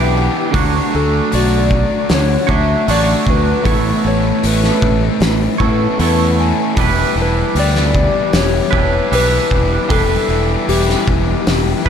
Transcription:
Already playing: fingered electric bass B1, overdriven electric guitar E3 B3 E4 G4, clean electric guitar D4 D5, soft synth lead G4, twelve-string acoustic guitar B4
0.15 overdriven electric guitar B3 E4 G4, twelve-string acoustic guitar G4
0.53 fingered electric bass D2, overdriven electric guitar D3 A3 D4 F#4, clean electric guitar F#3 C#5, twelve-string acoustic guitar A4, kick, open hi-hat
0.93 fingered electric bass D2, overdriven electric guitar A3 D4 F#4, soft synth lead A4, twelve-string acoustic guitar G#5
1.32 fingered electric bass B1, overdriven electric guitar D3 A3 D4 F#4, twelve-string acoustic guitar F#4, soft synth lead D5, open hi-hat
1.71 twelve-string acoustic guitar F#4, kick
2.09 fingered electric bass D2, twelve-string acoustic guitar F#4, snare, open hi-hat
2.14 soft synth lead C#5
2.47 fingered electric bass D2, clean electric guitar D3 F#3 C#5, overdriven electric guitar F#4, twelve-string acoustic guitar A4, kick
2.51 overdriven electric guitar A3 D4, soft synth lead E5
2.87 fingered electric bass A1, overdriven electric guitar D3 A3 D4 F#4, clean electric guitar F#3 C#5, twelve-string acoustic guitar A4, soft synth lead D5, open hi-hat
3.27 fingered electric bass D2, overdriven electric guitar A3 D4 F#4, twelve-string acoustic guitar F#4, soft synth lead B4, kick
3.64 fingered electric bass A1, overdriven electric guitar A2 E3 A3 C#4 E4, clean electric guitar B3 A4 C#5, twelve-string acoustic guitar C#5, kick, open hi-hat
4.03 fingered electric bass A1, overdriven electric guitar A3 C#4 E4, twelve-string acoustic guitar B4
4.08 soft synth lead C#5
4.43 fingered electric bass A1, overdriven electric guitar E3 A3 C#4 E4, twelve-string acoustic guitar A4, soft synth lead B4, open hi-hat
4.64 snare
4.82 fingered electric bass A1, twelve-string acoustic guitar A4, kick
5.20 fingered electric bass A1, twelve-string acoustic guitar A4, snare, open hi-hat
5.58 fingered electric bass A2, clean electric guitar B3 A4 C#5, overdriven electric guitar C#4 E4, twelve-string acoustic guitar B4, kick
5.62 overdriven electric guitar A3
5.99 fingered electric bass E2, overdriven electric guitar E3 A3 C#4 E4, clean electric guitar B3 A4 C#5, twelve-string acoustic guitar B4, open hi-hat
6.39 overdriven electric guitar A3 C#4 E4, twelve-string acoustic guitar G#5
6.77 fingered electric bass E1, overdriven electric guitar E3 G3 B3, clean electric guitar D4 B4, twelve-string acoustic guitar B4, kick, open hi-hat
6.81 overdriven electric guitar E4
7.16 fingered electric bass E1, overdriven electric guitar G3 B3 E4, twelve-string acoustic guitar A4
7.22 soft synth lead B4
7.55 fingered electric bass D2, overdriven electric guitar E3 G3 B3 E4, twelve-string acoustic guitar G4, open hi-hat
7.59 soft synth lead D5
7.76 snare
7.95 twelve-string acoustic guitar G4, kick
8.33 fingered electric bass E1, twelve-string acoustic guitar G4, snare, open hi-hat
8.37 soft synth lead C#5
8.71 fingered electric bass E1, overdriven electric guitar B3 E4, clean electric guitar D4 B4, twelve-string acoustic guitar B4, kick
8.75 clean electric guitar E3, overdriven electric guitar G3
9.11 fingered electric bass B1, overdriven electric guitar E3 G3 B3 E4, clean electric guitar D4 B4, twelve-string acoustic guitar B4, soft synth lead B4, open hi-hat
9.51 fingered electric bass E1, overdriven electric guitar G3 B3 E4, twelve-string acoustic guitar G4, kick
9.90 fingered electric bass E1, overdriven electric guitar E3 G3 B3 E4, clean electric guitar D4 B4, soft synth lead A4, twelve-string acoustic guitar B4, kick, open hi-hat
10.29 fingered electric bass E1, overdriven electric guitar G3 B3 E4, twelve-string acoustic guitar A4
10.67 fingered electric bass E1, overdriven electric guitar E3 G3 B3 E4, soft synth lead G4, twelve-string acoustic guitar G4, open hi-hat
10.89 snare
11.07 fingered electric bass E1, twelve-string acoustic guitar G4, kick
11.47 fingered electric bass E1, twelve-string acoustic guitar G4, snare, open hi-hat
11.84 fingered electric bass E2, overdriven electric guitar B3 E4, twelve-string acoustic guitar B4, clean electric guitar B4, kick

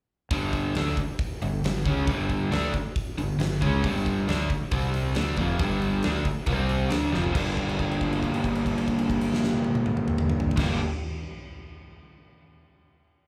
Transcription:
0.31 fingered electric bass G1, overdriven electric guitar G2 D3 G3, kick, open hi-hat
0.53 kick, open hi-hat
0.75 fingered electric bass D2, overdriven electric guitar D3 A3 D4, snare, open hi-hat
0.97 kick, open hi-hat
1.19 kick, open hi-hat
1.42 fingered electric bass G1, overdriven electric guitar G2 D3, open hi-hat
1.64 fingered electric bass G1, overdriven electric guitar G2 D3, snare, open hi-hat
1.85 fingered electric bass C#2, overdriven electric guitar C#3 G#3 C#4, kick, open hi-hat
2.07 fingered electric bass G1, overdriven electric guitar G2 D3 G3, kick, open hi-hat
2.29 kick, open hi-hat
2.51 fingered electric bass D2, overdriven electric guitar D3 A3 D4, snare, open hi-hat
2.74 kick, open hi-hat
2.96 kick, open hi-hat
3.18 fingered electric bass G1, overdriven electric guitar G2 D3, open hi-hat
3.39 fingered electric bass G1, overdriven electric guitar G2 D3, snare, open hi-hat
3.61 fingered electric bass C#2, overdriven electric guitar C#3 G#3 C#4, kick, open hi-hat
3.83 fingered electric bass G1, overdriven electric guitar G2 D3 G3, kick, open hi-hat
4.06 kick, open hi-hat
4.28 fingered electric bass D2, overdriven electric guitar D3 A3 D4, snare, open hi-hat
4.50 kick, open hi-hat
4.72 fingered electric bass C2, overdriven electric guitar C3 G3 C4, kick, open hi-hat
4.94 open hi-hat
5.15 fingered electric bass D2, overdriven electric guitar D3 A3 D4, snare, open hi-hat
5.37 fingered electric bass F1, overdriven electric guitar F2 C3 F3, kick, open hi-hat
5.59 fingered electric bass G1, overdriven electric guitar G2 D3 G3, kick, open hi-hat
5.82 open hi-hat
6.03 fingered electric bass D2, overdriven electric guitar D3 A3 D4, snare, open hi-hat
6.25 kick, open hi-hat
6.46 fingered electric bass C2, overdriven electric guitar C3 G3 C4, kick, open hi-hat
6.69 open hi-hat
6.90 fingered electric bass D2, overdriven electric guitar D3 A3 D4, snare, open hi-hat
7.12 fingered electric bass F1, overdriven electric guitar F2 C3 F3, snare
7.24 floor tom
7.33 fingered electric bass G1, overdriven electric guitar G2 D3 G3 A#3 D4, kick, crash
7.38 overdriven electric guitar G4
7.57 kick, crash
7.69 crash
7.79 kick, crash
7.91 crash
8.01 kick, crash
8.13 crash
8.23 kick, crash
8.34 crash
8.44 kick, crash
8.55 crash
8.66 kick, crash
8.78 crash
8.88 kick, crash
8.99 crash
9.10 kick, crash
9.21 crash
9.34 snare
9.44 snare
9.53 high tom
9.64 high tom
9.75 high tom
9.86 mid tom
9.97 mid tom
10.08 mid tom
10.18 mid tom
10.30 mid tom
10.40 floor tom
10.51 floor tom
10.56 fingered electric bass G1, overdriven electric guitar G2 D3 G3 A#3 D4, kick, snare, crash
10.61 overdriven electric guitar G4

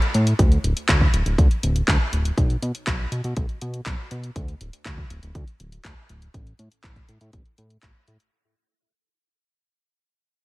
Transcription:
0.02 closed hi-hat
0.14 analog synth bass A2, closed hi-hat
0.27 closed hi-hat
0.39 analog synth bass D2, kick, closed hi-hat
0.52 closed hi-hat
0.64 analog synth bass D1, closed hi-hat
0.77 closed hi-hat
0.89 analog synth bass D2, kick, clap, closed hi-hat
1.01 kick
1.14 analog synth bass D1, closed hi-hat
1.26 analog synth bass D1, closed hi-hat
1.38 analog synth bass D2, kick, closed hi-hat
1.51 closed hi-hat
1.63 analog synth bass D1, closed hi-hat
1.76 closed hi-hat
1.88 analog synth bass D2, kick, clap, closed hi-hat
2.13 analog synth bass D1, closed hi-hat
2.25 closed hi-hat
2.38 analog synth bass B1, kick, closed hi-hat
2.50 closed hi-hat
2.62 analog synth bass B2, closed hi-hat
2.75 closed hi-hat
2.87 analog synth bass B1, kick, clap, closed hi-hat
3.12 analog synth bass B2, closed hi-hat
3.24 analog synth bass B2, closed hi-hat
3.37 analog synth bass B1, kick, closed hi-hat
3.49 closed hi-hat
3.61 analog synth bass B2, closed hi-hat
3.74 closed hi-hat
3.86 analog synth bass B1, kick, clap, closed hi-hat
4.11 analog synth bass B2, closed hi-hat
4.24 closed hi-hat
4.36 analog synth bass D2, kick, closed hi-hat
4.48 closed hi-hat
4.61 analog synth bass D1, closed hi-hat
4.73 closed hi-hat
4.85 analog synth bass D2, kick, clap, closed hi-hat
4.98 kick
5.10 analog synth bass D1, closed hi-hat
5.23 analog synth bass D1, closed hi-hat
5.35 analog synth bass D2, kick, closed hi-hat
5.48 closed hi-hat
5.60 analog synth bass D1, closed hi-hat
5.72 closed hi-hat
5.85 analog synth bass D2, kick, clap, closed hi-hat
6.09 analog synth bass D1, closed hi-hat
6.22 closed hi-hat
6.34 analog synth bass A1, kick, closed hi-hat
6.47 closed hi-hat
6.59 analog synth bass A2, closed hi-hat
6.72 closed hi-hat
6.84 analog synth bass A1, kick, clap, closed hi-hat
6.96 kick, closed hi-hat
7.09 analog synth bass A2, closed hi-hat
7.21 analog synth bass A2, closed hi-hat
7.33 analog synth bass A1, kick, closed hi-hat
7.46 closed hi-hat
7.58 analog synth bass A2, closed hi-hat
7.70 closed hi-hat
7.83 analog synth bass A1, kick, clap, closed hi-hat
8.08 analog synth bass A2, closed hi-hat
8.20 closed hi-hat

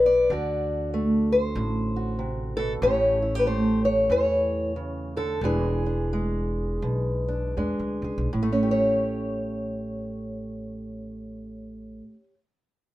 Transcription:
Already playing: upright bass B1, steel-string acoustic guitar E3 B3 B4
0.06 steel-string acoustic guitar D5
0.30 upright bass D2, steel-string acoustic guitar D3 F#4
0.94 steel-string acoustic guitar A3
1.32 steel-string acoustic guitar C5
1.55 upright bass A1, steel-string acoustic guitar A2
1.96 steel-string acoustic guitar F#4
2.19 steel-string acoustic guitar C3
2.57 steel-string acoustic guitar B2 A4
2.82 upright bass A1, steel-string acoustic guitar A2 A3 C#4 G4 C#5
3.22 steel-string acoustic guitar E4
3.35 steel-string acoustic guitar G4
3.39 steel-string acoustic guitar B4
3.46 steel-string acoustic guitar A3 C5
3.85 steel-string acoustic guitar C#5
4.10 upright bass E2, steel-string acoustic guitar E3 C#5
4.76 steel-string acoustic guitar C#3
5.17 steel-string acoustic guitar D3 A4
5.41 upright bass E1, steel-string acoustic guitar E3 G#3 D4 G#4
5.86 steel-string acoustic guitar D4
6.13 steel-string acoustic guitar G#3
6.82 upright bass B1, steel-string acoustic guitar B2
7.28 steel-string acoustic guitar D4
7.57 upright bass E2, steel-string acoustic guitar G#3 D4
7.79 upright bass D2
8.02 upright bass C#2, steel-string acoustic guitar G#4
8.18 upright bass B1
8.33 upright bass A1, steel-string acoustic guitar A2
8.43 steel-string acoustic guitar A3
8.53 steel-string acoustic guitar C#4
8.63 steel-string acoustic guitar G4
8.71 steel-string acoustic guitar C#5

